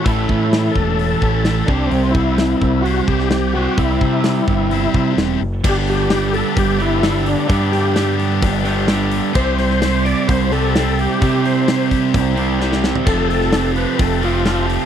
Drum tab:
CC |----------------|----------------|----------------|x---------------|
HH |o---o---o---o---|o---o---o---o---|o---o---o---o---|--o-o-o-o-o-o-o-|
SD |----o-------o---|----o------oo---|----o-------o---|----o-------o---|
FT |----------------|----------------|----------------|----------------|
BD |o-o---o---o---o-|--o---o---o-----|o-o---o---o-----|o-------o-------|

CC |----------------|x---------------|----------------|x---------------|
HH |o-o-o-o-o-o-o-o-|--o-o-o-o-o-o-o-|o-o-o-o-o-o-----|--o-o-o-o-o-o-o-|
SD |--o-o-------o---|--ooo-------o---|----o-------ooo-|---oo-------o---|
FT |----------------|----------------|---------------o|----------------|
BD |o-------o-------|o-------o-------|o-----o-o-------|o-------o-------|